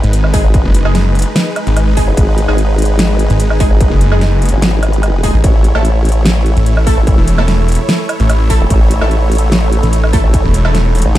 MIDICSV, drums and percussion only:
0, 0, Header, 1, 2, 480
1, 0, Start_track
1, 0, Tempo, 408163
1, 635, Time_signature, 4, 2, 24, 8
1, 13152, End_track
2, 0, Start_track
2, 0, Title_t, "Drums"
2, 41, Note_on_c, 9, 42, 38
2, 155, Note_off_c, 9, 42, 0
2, 155, Note_on_c, 9, 42, 85
2, 273, Note_off_c, 9, 42, 0
2, 281, Note_on_c, 9, 77, 50
2, 395, Note_on_c, 9, 36, 109
2, 395, Note_on_c, 9, 46, 97
2, 398, Note_off_c, 9, 77, 0
2, 513, Note_off_c, 9, 36, 0
2, 513, Note_off_c, 9, 46, 0
2, 635, Note_on_c, 9, 36, 124
2, 635, Note_on_c, 9, 42, 83
2, 753, Note_off_c, 9, 36, 0
2, 753, Note_off_c, 9, 42, 0
2, 876, Note_on_c, 9, 42, 85
2, 993, Note_off_c, 9, 42, 0
2, 1002, Note_on_c, 9, 77, 49
2, 1116, Note_on_c, 9, 38, 66
2, 1116, Note_on_c, 9, 42, 58
2, 1119, Note_off_c, 9, 77, 0
2, 1234, Note_off_c, 9, 38, 0
2, 1234, Note_off_c, 9, 42, 0
2, 1356, Note_on_c, 9, 42, 52
2, 1398, Note_off_c, 9, 42, 0
2, 1398, Note_on_c, 9, 42, 68
2, 1436, Note_off_c, 9, 42, 0
2, 1436, Note_on_c, 9, 42, 85
2, 1553, Note_off_c, 9, 42, 0
2, 1596, Note_on_c, 9, 38, 125
2, 1596, Note_on_c, 9, 42, 86
2, 1714, Note_off_c, 9, 38, 0
2, 1714, Note_off_c, 9, 42, 0
2, 1836, Note_on_c, 9, 42, 57
2, 1836, Note_on_c, 9, 77, 52
2, 1954, Note_off_c, 9, 42, 0
2, 1954, Note_off_c, 9, 77, 0
2, 1962, Note_on_c, 9, 42, 38
2, 2076, Note_off_c, 9, 42, 0
2, 2076, Note_on_c, 9, 42, 84
2, 2076, Note_on_c, 9, 77, 50
2, 2194, Note_off_c, 9, 42, 0
2, 2194, Note_off_c, 9, 77, 0
2, 2315, Note_on_c, 9, 36, 64
2, 2316, Note_on_c, 9, 46, 92
2, 2433, Note_off_c, 9, 36, 0
2, 2433, Note_off_c, 9, 46, 0
2, 2555, Note_on_c, 9, 36, 127
2, 2556, Note_on_c, 9, 42, 81
2, 2673, Note_off_c, 9, 36, 0
2, 2674, Note_off_c, 9, 42, 0
2, 2796, Note_on_c, 9, 42, 84
2, 2914, Note_off_c, 9, 42, 0
2, 2921, Note_on_c, 9, 77, 54
2, 3036, Note_on_c, 9, 42, 56
2, 3039, Note_off_c, 9, 77, 0
2, 3153, Note_off_c, 9, 42, 0
2, 3275, Note_on_c, 9, 42, 52
2, 3317, Note_off_c, 9, 42, 0
2, 3317, Note_on_c, 9, 42, 66
2, 3355, Note_off_c, 9, 42, 0
2, 3355, Note_on_c, 9, 42, 82
2, 3473, Note_off_c, 9, 42, 0
2, 3515, Note_on_c, 9, 38, 127
2, 3515, Note_on_c, 9, 42, 83
2, 3633, Note_off_c, 9, 38, 0
2, 3633, Note_off_c, 9, 42, 0
2, 3755, Note_on_c, 9, 42, 57
2, 3873, Note_off_c, 9, 42, 0
2, 3881, Note_on_c, 9, 42, 37
2, 3995, Note_off_c, 9, 42, 0
2, 3995, Note_on_c, 9, 42, 82
2, 4112, Note_off_c, 9, 42, 0
2, 4121, Note_on_c, 9, 77, 52
2, 4235, Note_on_c, 9, 36, 114
2, 4235, Note_on_c, 9, 46, 89
2, 4239, Note_off_c, 9, 77, 0
2, 4353, Note_off_c, 9, 36, 0
2, 4353, Note_off_c, 9, 46, 0
2, 4475, Note_on_c, 9, 36, 124
2, 4475, Note_on_c, 9, 42, 77
2, 4593, Note_off_c, 9, 36, 0
2, 4593, Note_off_c, 9, 42, 0
2, 4715, Note_on_c, 9, 42, 80
2, 4833, Note_off_c, 9, 42, 0
2, 4842, Note_on_c, 9, 77, 55
2, 4956, Note_on_c, 9, 38, 66
2, 4956, Note_on_c, 9, 42, 55
2, 4959, Note_off_c, 9, 77, 0
2, 5073, Note_off_c, 9, 38, 0
2, 5073, Note_off_c, 9, 42, 0
2, 5196, Note_on_c, 9, 42, 49
2, 5239, Note_off_c, 9, 42, 0
2, 5239, Note_on_c, 9, 42, 65
2, 5276, Note_off_c, 9, 42, 0
2, 5276, Note_on_c, 9, 42, 81
2, 5394, Note_off_c, 9, 42, 0
2, 5436, Note_on_c, 9, 38, 123
2, 5436, Note_on_c, 9, 42, 81
2, 5554, Note_off_c, 9, 38, 0
2, 5554, Note_off_c, 9, 42, 0
2, 5676, Note_on_c, 9, 42, 55
2, 5676, Note_on_c, 9, 77, 55
2, 5794, Note_off_c, 9, 42, 0
2, 5794, Note_off_c, 9, 77, 0
2, 5802, Note_on_c, 9, 42, 35
2, 5916, Note_off_c, 9, 42, 0
2, 5916, Note_on_c, 9, 42, 79
2, 5916, Note_on_c, 9, 77, 54
2, 6034, Note_off_c, 9, 42, 0
2, 6034, Note_off_c, 9, 77, 0
2, 6155, Note_on_c, 9, 36, 64
2, 6156, Note_on_c, 9, 46, 91
2, 6273, Note_off_c, 9, 36, 0
2, 6273, Note_off_c, 9, 46, 0
2, 6395, Note_on_c, 9, 36, 121
2, 6396, Note_on_c, 9, 42, 77
2, 6513, Note_off_c, 9, 36, 0
2, 6513, Note_off_c, 9, 42, 0
2, 6636, Note_on_c, 9, 42, 80
2, 6754, Note_off_c, 9, 42, 0
2, 6762, Note_on_c, 9, 77, 58
2, 6877, Note_on_c, 9, 42, 53
2, 6880, Note_off_c, 9, 77, 0
2, 6994, Note_off_c, 9, 42, 0
2, 7117, Note_on_c, 9, 42, 46
2, 7158, Note_off_c, 9, 42, 0
2, 7158, Note_on_c, 9, 42, 62
2, 7196, Note_off_c, 9, 42, 0
2, 7196, Note_on_c, 9, 42, 78
2, 7313, Note_off_c, 9, 42, 0
2, 7356, Note_on_c, 9, 38, 120
2, 7356, Note_on_c, 9, 42, 78
2, 7473, Note_off_c, 9, 38, 0
2, 7473, Note_off_c, 9, 42, 0
2, 7596, Note_on_c, 9, 42, 52
2, 7714, Note_off_c, 9, 42, 0
2, 7722, Note_on_c, 9, 42, 36
2, 7836, Note_off_c, 9, 42, 0
2, 7836, Note_on_c, 9, 42, 77
2, 7954, Note_off_c, 9, 42, 0
2, 7963, Note_on_c, 9, 77, 55
2, 8075, Note_on_c, 9, 36, 105
2, 8076, Note_on_c, 9, 46, 89
2, 8080, Note_off_c, 9, 77, 0
2, 8193, Note_off_c, 9, 36, 0
2, 8194, Note_off_c, 9, 46, 0
2, 8315, Note_on_c, 9, 36, 114
2, 8316, Note_on_c, 9, 42, 75
2, 8433, Note_off_c, 9, 36, 0
2, 8434, Note_off_c, 9, 42, 0
2, 8556, Note_on_c, 9, 42, 80
2, 8673, Note_off_c, 9, 42, 0
2, 8681, Note_on_c, 9, 77, 54
2, 8796, Note_on_c, 9, 38, 64
2, 8796, Note_on_c, 9, 42, 53
2, 8799, Note_off_c, 9, 77, 0
2, 8913, Note_off_c, 9, 38, 0
2, 8913, Note_off_c, 9, 42, 0
2, 9036, Note_on_c, 9, 42, 47
2, 9078, Note_off_c, 9, 42, 0
2, 9078, Note_on_c, 9, 42, 63
2, 9116, Note_off_c, 9, 42, 0
2, 9116, Note_on_c, 9, 42, 77
2, 9233, Note_off_c, 9, 42, 0
2, 9276, Note_on_c, 9, 38, 112
2, 9276, Note_on_c, 9, 42, 75
2, 9393, Note_off_c, 9, 38, 0
2, 9393, Note_off_c, 9, 42, 0
2, 9515, Note_on_c, 9, 42, 53
2, 9515, Note_on_c, 9, 77, 56
2, 9633, Note_off_c, 9, 42, 0
2, 9633, Note_off_c, 9, 77, 0
2, 9641, Note_on_c, 9, 42, 35
2, 9755, Note_off_c, 9, 42, 0
2, 9755, Note_on_c, 9, 42, 77
2, 9755, Note_on_c, 9, 77, 56
2, 9873, Note_off_c, 9, 42, 0
2, 9873, Note_off_c, 9, 77, 0
2, 9995, Note_on_c, 9, 36, 60
2, 9995, Note_on_c, 9, 46, 92
2, 10113, Note_off_c, 9, 36, 0
2, 10113, Note_off_c, 9, 46, 0
2, 10235, Note_on_c, 9, 36, 114
2, 10235, Note_on_c, 9, 42, 80
2, 10353, Note_off_c, 9, 36, 0
2, 10353, Note_off_c, 9, 42, 0
2, 10476, Note_on_c, 9, 42, 82
2, 10593, Note_off_c, 9, 42, 0
2, 10601, Note_on_c, 9, 77, 55
2, 10715, Note_on_c, 9, 42, 54
2, 10719, Note_off_c, 9, 77, 0
2, 10833, Note_off_c, 9, 42, 0
2, 10955, Note_on_c, 9, 42, 48
2, 10997, Note_off_c, 9, 42, 0
2, 10997, Note_on_c, 9, 42, 63
2, 11036, Note_off_c, 9, 42, 0
2, 11036, Note_on_c, 9, 42, 80
2, 11154, Note_off_c, 9, 42, 0
2, 11196, Note_on_c, 9, 38, 116
2, 11196, Note_on_c, 9, 42, 80
2, 11313, Note_off_c, 9, 38, 0
2, 11313, Note_off_c, 9, 42, 0
2, 11436, Note_on_c, 9, 42, 54
2, 11554, Note_off_c, 9, 42, 0
2, 11562, Note_on_c, 9, 42, 37
2, 11676, Note_off_c, 9, 42, 0
2, 11676, Note_on_c, 9, 42, 80
2, 11794, Note_off_c, 9, 42, 0
2, 11802, Note_on_c, 9, 77, 54
2, 11915, Note_on_c, 9, 36, 106
2, 11916, Note_on_c, 9, 46, 99
2, 11920, Note_off_c, 9, 77, 0
2, 12033, Note_off_c, 9, 36, 0
2, 12034, Note_off_c, 9, 46, 0
2, 12155, Note_on_c, 9, 36, 114
2, 12157, Note_on_c, 9, 42, 81
2, 12273, Note_off_c, 9, 36, 0
2, 12274, Note_off_c, 9, 42, 0
2, 12396, Note_on_c, 9, 42, 83
2, 12514, Note_off_c, 9, 42, 0
2, 12523, Note_on_c, 9, 77, 55
2, 12637, Note_on_c, 9, 38, 63
2, 12637, Note_on_c, 9, 42, 57
2, 12641, Note_off_c, 9, 77, 0
2, 12755, Note_off_c, 9, 38, 0
2, 12755, Note_off_c, 9, 42, 0
2, 12877, Note_on_c, 9, 46, 65
2, 12919, Note_on_c, 9, 42, 64
2, 12956, Note_off_c, 9, 42, 0
2, 12956, Note_on_c, 9, 42, 82
2, 12995, Note_off_c, 9, 46, 0
2, 13074, Note_off_c, 9, 42, 0
2, 13117, Note_on_c, 9, 38, 118
2, 13117, Note_on_c, 9, 42, 82
2, 13152, Note_off_c, 9, 38, 0
2, 13152, Note_off_c, 9, 42, 0
2, 13152, End_track
0, 0, End_of_file